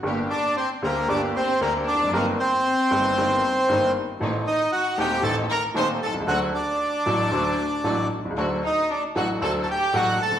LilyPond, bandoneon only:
\new Staff \with { instrumentName = "Bandoneon" } { \time 4/4 \key g \minor \tempo 4 = 116 << { r8 d''8 c''8 bes'8 d''8 c''8 bes'8 d''8 | bes'8 c''2. r8 | r8 ees''8 fis''8 g''8 a''8 bes''8 c'''8 a''8 | fis''8 d''2. r8 |
r8 ees''8 d''8 fis''8 a''16. a''32 g''8 fis''8 a''8 | } \\ { r8 d'8 c'8 bes8 d'8 c'8 bes8 d'8 | bes8 c'2. r8 | r8 ees'8 fis'8 g'8 a'8 bes'8 c''8 a'8 | fis'8 d'2. r8 |
r8 ees'8 d'8 fis'8 a'8 g'8 fis'8 a'8 | } >> }